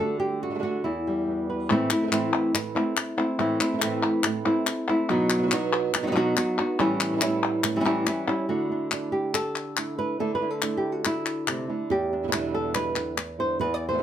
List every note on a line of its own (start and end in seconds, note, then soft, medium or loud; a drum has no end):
0.00 0.42 D3 medium
0.00 0.85 D3 medium
0.00 0.42 A3 medium
0.00 0.42 D4 medium
0.00 0.41 F#4 medium
0.00 0.19 A4 loud
0.20 0.42 G4 medium
0.42 0.49 A3 soft
0.42 0.50 D4 soft
0.42 0.50 F#4 soft
0.42 0.62 F#4 medium
0.50 0.53 D3 soft
0.50 0.54 A3 soft
0.50 0.54 D4 soft
0.50 0.54 F#4 soft
0.55 0.58 D3 soft
0.55 0.58 A3 soft
0.55 0.59 D4 medium
0.55 0.59 F#4 medium
0.59 0.62 D3 medium
0.59 0.63 A3 medium
0.59 0.63 D4 medium
0.59 0.63 F#4 medium
0.59 0.85 F#4 medium
0.64 0.84 D3 medium
0.64 0.84 A3 medium
0.64 0.85 D4 medium
0.64 0.84 F#4 medium
0.84 1.70 E2 medium
0.84 1.48 E4 medium
0.84 muted nylon-string guitar stroke soft
1.07 1.68 G3 soft
1.27 1.69 E3 soft
1.27 1.69 G3 soft
1.27 1.70 B3 soft
1.27 1.70 F#4 soft
1.50 1.68 B4 soft
1.70 1.91 A2 medium
1.70 1.91 E3 medium
1.70 1.91 A3 medium
1.70 1.91 C4 medium
1.70 1.90 E4 medium
1.70 muted nylon-string guitar stroke medium
1.90 2.11 A3 soft
1.90 2.11 C4 medium
1.90 2.12 E4 medium
1.90 clap medium
2.02 2.06 E3 soft
2.02 2.06 A3 medium
2.02 2.07 C4 soft
2.02 2.07 E4 medium
2.07 2.11 E3 medium
2.07 2.11 A3 medium
2.07 2.11 C4 medium
2.07 2.11 E4 medium
2.11 2.32 A2 medium
2.11 2.53 E3 medium
2.11 2.33 E3 medium
2.11 2.53 A3 medium
2.11 2.33 A3 medium
2.11 2.33 C4 medium
2.11 2.54 C4 medium
2.11 2.32 E4 medium
2.11 2.54 E4 medium
2.11 clap medium
2.33 2.54 A3 soft
2.33 2.54 C4 soft
2.33 2.54 E4 soft
2.33 clap medium
2.54 2.75 A2 medium
2.54 2.75 E3 medium
2.54 2.75 A3 medium
2.54 2.75 C4 medium
2.54 2.74 E4 medium
2.54 muted nylon-string guitar stroke medium
2.54 clap medium
2.75 3.18 A3 soft
2.75 2.96 A3 soft
2.75 3.17 C4 medium
2.75 2.96 C4 soft
2.75 3.16 E4 medium
2.75 2.96 E4 soft
2.97 muted nylon-string guitar stroke medium
2.97 clap medium
3.17 3.38 A3 soft
3.17 3.39 C4 soft
3.17 3.38 E4 medium
3.39 3.60 A2 medium
3.39 3.60 E3 medium
3.39 3.60 A3 medium
3.39 3.60 C4 medium
3.39 3.59 E4 medium
3.39 muted nylon-string guitar stroke medium
3.60 3.81 A3 soft
3.60 3.81 C4 medium
3.60 3.81 E4 medium
3.60 clap medium
3.73 3.76 E3 soft
3.73 3.77 A3 medium
3.73 3.77 C4 medium
3.73 3.78 E4 medium
3.78 3.81 E3 medium
3.78 4.23 E3 medium
3.78 3.82 A3 medium
3.78 3.82 C4 medium
3.78 3.82 E4 medium
3.82 4.03 A2 medium
3.82 4.03 E3 medium
3.82 4.23 A3 medium
3.82 4.03 A3 medium
3.82 4.23 C4 medium
3.82 4.03 C4 medium
3.82 4.23 E4 medium
3.82 4.02 E4 medium
3.82 clap medium
4.03 4.25 A3 soft
4.03 4.24 C4 soft
4.03 4.24 E4 medium
4.03 clap soft
4.24 4.45 A2 medium
4.24 4.45 E3 medium
4.24 4.45 A3 medium
4.24 4.46 C4 medium
4.24 4.45 E4 medium
4.24 muted nylon-string guitar stroke medium
4.24 clap medium
4.46 4.88 A3 soft
4.46 4.67 A3 soft
4.46 4.88 C4 medium
4.46 4.67 C4 soft
4.46 4.87 E4 medium
4.46 4.66 E4 soft
4.67 muted nylon-string guitar stroke medium
4.67 clap medium
4.89 5.10 A3 soft
4.89 5.10 C4 medium
4.89 5.09 E4 medium
5.10 5.51 B2 medium
5.10 5.51 F#3 medium
5.10 5.52 B3 medium
5.10 5.52 D#4 medium
5.10 5.51 F#4 medium
5.10 muted nylon-string guitar stroke medium
5.30 clap medium
5.38 5.41 F#3 soft
5.38 5.42 B3 soft
5.38 5.42 D#4 medium
5.38 5.42 F#4 medium
5.42 5.45 F#3 medium
5.42 5.46 B3 medium
5.42 5.47 D#4 medium
5.42 5.47 F#4 medium
5.47 5.51 F#3 medium
5.47 5.51 B3 medium
5.47 5.51 D#4 medium
5.47 5.51 F#4 medium
5.51 5.92 B2 medium
5.51 5.93 F#3 medium
5.51 5.93 B3 medium
5.51 5.95 B3 soft
5.51 5.93 D#4 medium
5.51 5.94 D#4 soft
5.51 5.94 F#4 medium
5.51 clap medium
5.73 clap medium
5.93 6.35 B2 medium
5.93 6.35 F#3 medium
5.93 6.36 B3 medium
5.93 6.36 D#4 medium
5.93 6.36 F#4 medium
5.93 muted nylon-string guitar stroke medium
5.93 clap medium
6.03 6.06 F#3 medium
6.03 6.06 B3 medium
6.03 6.07 D#4 medium
6.03 6.07 F#4 medium
6.07 6.11 F#3 medium
6.07 6.11 B3 medium
6.07 6.11 D#4 medium
6.07 6.12 F#4 medium
6.12 6.15 F#3 medium
6.12 6.15 B3 medium
6.12 6.16 D#4 medium
6.12 6.16 F#4 medium
6.16 6.36 B2 medium
6.16 6.35 F#3 medium
6.16 6.36 B3 medium
6.16 6.37 D#4 medium
6.16 6.37 F#4 medium
6.36 6.57 F#3 medium
6.36 6.57 B3 medium
6.36 6.58 D#4 medium
6.36 6.58 F#4 medium
6.36 muted nylon-string guitar stroke medium
6.36 clap medium
6.57 6.79 B3 soft
6.57 6.80 B3 soft
6.57 6.79 D#4 soft
6.57 6.78 F#4 soft
6.57 6.79 F#4 medium
6.79 7.21 A2 medium
6.79 7.21 E3 medium
6.79 7.21 G3 medium
6.79 7.21 C#4 medium
6.79 7.21 E4 medium
6.79 muted nylon-string guitar stroke medium
7.00 clap medium
7.12 7.16 E3 soft
7.12 7.16 G3 medium
7.12 7.17 C#4 medium
7.12 7.17 E4 medium
7.17 7.21 E3 medium
7.17 7.21 G3 medium
7.17 7.21 C#4 medium
7.17 7.22 E4 medium
7.21 7.63 A2 medium
7.21 7.63 E3 medium
7.21 7.63 G3 medium
7.21 7.64 G3 soft
7.21 7.64 C#4 medium
7.21 7.64 C#4 soft
7.21 7.64 E4 medium
7.21 clap medium
7.64 8.05 A2 medium
7.64 8.05 E3 medium
7.64 8.05 G3 medium
7.64 8.06 C#4 medium
7.64 8.06 E4 medium
7.64 muted nylon-string guitar stroke medium
7.64 clap medium
7.76 7.79 E3 medium
7.76 7.80 G3 medium
7.76 7.80 C#4 medium
7.76 7.80 E4 medium
7.80 7.84 E3 medium
7.80 7.84 G3 medium
7.80 7.85 C#4 medium
7.80 7.85 E4 medium
7.85 8.06 A2 medium
7.85 8.05 E3 medium
7.85 8.06 G3 medium
7.85 8.06 C#4 medium
7.85 8.06 E4 loud
8.06 8.27 E3 medium
8.06 8.27 G3 medium
8.06 8.27 C#4 medium
8.06 8.27 E4 medium
8.06 muted nylon-string guitar stroke medium
8.06 clap medium
8.28 8.49 G3 soft
8.28 8.49 C#4 medium
8.28 8.49 C#4 soft
8.28 8.48 E4 soft
8.28 8.48 E4 medium
8.48 8.69 D3 medium
8.48 10.19 D3 medium
8.48 8.70 A3 medium
8.48 8.69 D4 medium
8.48 8.68 E4 medium
8.48 9.12 F#4 medium
8.69 8.91 A3 soft
8.69 8.91 D4 soft
8.69 8.93 D4 soft
8.69 8.90 E4 soft
8.91 9.32 A3 soft
8.91 9.33 D4 soft
8.91 10.45 D4 soft
8.91 9.33 E4 soft
8.91 clap medium
9.12 9.77 G4 medium
9.33 9.98 A4 medium
9.33 muted nylon-string guitar stroke soft
9.33 clap medium
9.56 clap medium
9.76 9.97 D3 soft
9.76 9.98 A3 soft
9.76 9.97 D4 soft
9.76 9.97 E4 soft
9.76 clap medium
9.98 10.19 A3 soft
9.98 10.19 D4 soft
9.98 10.19 E4 soft
9.98 10.20 B4 medium
10.19 10.40 D3 medium
10.19 11.68 D3 medium
10.19 10.40 A3 medium
10.19 10.41 D4 medium
10.19 10.39 E4 medium
10.19 10.34 A4 medium
10.35 10.51 B4 medium
10.41 10.62 A3 soft
10.41 10.62 D4 soft
10.41 10.61 E4 soft
10.41 10.77 E4 soft
10.51 11.06 A4 medium
10.62 11.04 A3 soft
10.62 11.04 D4 soft
10.62 11.04 E4 soft
10.62 clap medium
10.77 10.92 G4 medium
10.92 11.48 F#4 medium
11.05 11.91 E4 medium
11.05 muted nylon-string guitar stroke soft
11.05 clap medium
11.26 clap medium
11.47 11.69 C3 medium
11.47 11.68 D3 soft
11.47 11.68 A3 soft
11.47 11.68 D4 soft
11.47 11.67 E4 soft
11.47 clap medium
11.68 11.91 D3 medium
11.68 11.90 A3 soft
11.68 11.90 D4 soft
11.68 11.89 E4 soft
11.90 13.59 E2 medium
11.90 12.98 G4 medium
11.90 muted nylon-string guitar stroke medium
12.13 12.34 D4 soft
12.23 12.27 B2 soft
12.23 12.27 D3 soft
12.23 12.27 G3 soft
12.23 12.27 B3 soft
12.23 12.28 E4 soft
12.28 12.31 B2 medium
12.28 12.32 D3 medium
12.28 12.32 G3 medium
12.28 12.32 B3 medium
12.28 12.32 E4 medium
12.32 12.73 E2 medium
12.32 12.74 B2 medium
12.32 12.74 D3 medium
12.32 12.75 G3 medium
12.32 12.75 B3 medium
12.32 13.63 D4 soft
12.32 12.75 E4 medium
12.32 clap medium
12.54 12.75 A4 medium
12.75 12.96 E2 medium
12.75 12.96 B2 medium
12.75 12.96 D3 medium
12.75 12.96 G3 medium
12.75 12.95 B3 medium
12.75 12.94 E4 medium
12.75 13.39 B4 medium
12.75 clap medium
12.96 13.16 D3 soft
12.96 13.16 G3 soft
12.96 13.16 B3 soft
12.96 13.17 E4 soft
12.96 clap medium
13.17 muted nylon-string guitar stroke medium
13.17 clap medium
13.38 13.60 D3 soft
13.38 13.60 G3 soft
13.38 13.60 B3 soft
13.38 13.59 E4 soft
13.38 13.60 C5 medium
13.60 14.03 E2 medium
13.60 13.74 B4 loud
13.60 muted nylon-string guitar stroke medium
13.74 13.88 D5 medium
13.89 13.92 B2 soft
13.89 13.93 D3 soft
13.89 13.93 G3 soft
13.89 13.93 B3 medium
13.89 13.93 E4 soft
13.89 14.03 C5 medium
13.93 13.97 B2 soft
13.93 13.97 D3 medium
13.93 13.97 G3 medium
13.93 13.97 B3 medium
13.93 13.98 E4 medium
13.98 14.01 B2 medium
13.98 14.02 D3 medium
13.98 14.02 G3 medium
13.98 14.02 B3 medium
13.98 14.02 E4 medium